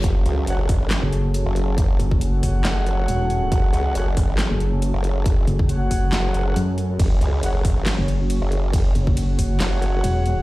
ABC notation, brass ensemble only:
X:1
M:4/4
L:1/16
Q:"Swing 16ths" 1/4=138
K:F#m
V:1 name="Brass ensemble"
z4 [Fcf] z8 z3 | z4 [Fcf]12- | [Fcf]4 [Fcf] z8 z3 | z4 [Fcf]6- [Fcf] [Fcf] z4 |
z4 [Fcf] z8 z3 | z4 [Fcf]12 |]